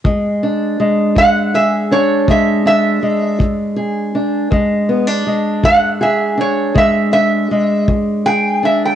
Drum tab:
BD |o--o--o--o--|o--o--o--o--|